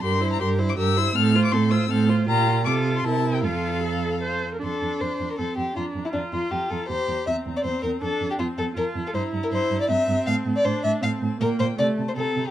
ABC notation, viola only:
X:1
M:3/4
L:1/16
Q:1/4=159
K:F
V:1 name="Viola"
G2 E2 G2 E2 G2 E2 | C2 F2 C2 F2 C2 F2 | F4 F4 E4 | F4 A4 c3 B |
D8 C4 | D4 F8 | G4 C8 | D4 C4 F4 |
E8 C4- | C4 D4 C4 | B,4 A,4 C4 |]